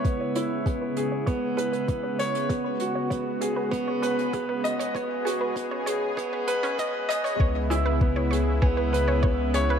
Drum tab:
HH |x-x-x-x-x-xxx-xx|x-x-x-x-x-xxx-xx|x-x-x-x-x-xxx-xx|--x---x---x---x-|
BD |o---o---o---o---|o---o---o---o---|o---o---o---o---|o---o---o---o---|